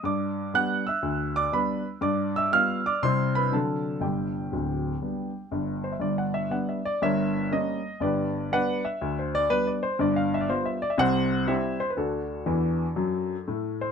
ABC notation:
X:1
M:4/4
L:1/16
Q:"Swing" 1/4=120
K:G
V:1 name="Grand piano"
[dd']4 [ff']2 [ee']4 [dd']2 [Bb]2 z2 | [dd']2 [ee']2 [=f=f']2 [dd']2 [cc']2 [Bb]2 [Aa]4 | [Gg]12- [Gg]2 c e | d f e2 f e d2 [_B_de]4 _e4 |
[GBd]4 [Bdf]2 e3 c d2 B d c2 | d =f e d c e d e [c^f]4 [Gce]2 c B | [DFA]12 z2 c z |]
V:2 name="Grand piano" clef=bass
G,,4 [G,B,D]4 D,,4 [G,B,D]4 | G,,4 [G,B,=F]4 [C,G,CE]4 [D,^F,CD]4 | [G,,,G,,]4 [D,,,D,,]4 [G,B,D]4 [G,,,G,,]4 | [G,,,G,,]4 [G,B,D]4 [G,,,G,,]4 [G,_B,_D]4 |
[G,,,G,,]4 [G,B,D]4 [D,,D,]4 [G,B,D]4 | [G,,,G,,]4 [G,B,=F]4 [C,,C,]4 [G,CE]4 | [D,,D,]4 [E,,E,]4 [F,,F,]4 [A,,A,]4 |]